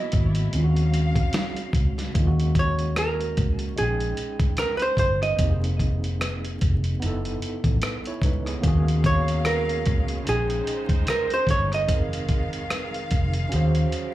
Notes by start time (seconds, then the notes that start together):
Already playing: B2 E3 F#3 A#3 B3 E4 F#4 D#5
0.12 G#1, kick, closed hi-hat
0.35 closed hi-hat
0.51 C#3 F#3 G#3 C4 F5, closed hi-hat
0.55 D#2 C#4 F4
0.64 F#4
0.76 closed hi-hat
0.94 closed hi-hat
1.16 kick, closed hi-hat
1.33 snare, closed hi-hat
1.57 closed hi-hat
1.73 C#2, kick, closed hi-hat
1.98 snare, closed hi-hat
2.14 D#2 G#3 A#3, kick, closed hi-hat
2.19 C#4 F4
2.27 F#4
2.40 closed hi-hat
2.55 kick, closed hi-hat
2.59 C#5
2.79 closed hi-hat
2.96 A#4, cross-stick, closed hi-hat
3.21 closed hi-hat
3.37 C#2, kick, closed hi-hat
3.59 closed hi-hat
3.76 G#3 C#4 G#4, closed hi-hat
3.80 A#1 D#4 G5
4.00 closed hi-hat
4.17 closed hi-hat
4.40 C#2, kick, closed hi-hat
4.57 A#4, cross-stick, closed hi-hat
4.77 B4, closed hi-hat
4.82 C5
4.97 G1 C5, kick, closed hi-hat
5.22 D#5, cross-stick, closed hi-hat
5.37 F1 A#3 C4, kick, closed hi-hat
5.41 D#4 G4
5.50 G#4
5.64 closed hi-hat
5.79 kick, closed hi-hat
6.04 closed hi-hat
6.21 cross-stick, closed hi-hat
6.45 closed hi-hat
6.61 F1, kick, closed hi-hat
6.84 closed hi-hat
7.00 F#1 B3 D#4, closed hi-hat
7.04 E4 A4
7.25 closed hi-hat
7.42 closed hi-hat
7.64 A1, kick, closed hi-hat
7.82 cross-stick, closed hi-hat
8.06 E4 C#5, closed hi-hat
8.22 C#2 D#4 B4, kick, closed hi-hat
8.46 B3 G#4, cross-stick, closed hi-hat
8.62 D#2 C#3 F#3 G#3 A#3 C#4 F5, kick, closed hi-hat
8.66 F#4 G#4
8.88 closed hi-hat
9.04 C#5, kick, closed hi-hat
9.28 closed hi-hat
9.45 A#4, cross-stick, closed hi-hat
9.69 closed hi-hat
9.86 C#2, kick, closed hi-hat
10.08 closed hi-hat
10.24 C#4 D#4 C5, closed hi-hat
10.28 A#1 G#4 G5
10.50 closed hi-hat
10.67 closed hi-hat
10.89 C#2, kick, closed hi-hat
11.07 A#4, cross-stick, closed hi-hat
11.30 C5, closed hi-hat
11.47 G1 C#5, kick, closed hi-hat
11.72 D#5, cross-stick, closed hi-hat
11.87 F1 D#3 C4 D#4 G#4 F5, kick, closed hi-hat
11.94 A#4
12.13 closed hi-hat
12.29 kick, closed hi-hat
12.53 closed hi-hat
12.70 cross-stick, closed hi-hat
12.94 closed hi-hat
13.11 F1, kick, closed hi-hat
13.33 closed hi-hat
13.49 C#3 F#3 C#4 F#4, closed hi-hat
13.54 D#2 G#4 C5
13.75 closed hi-hat
13.92 closed hi-hat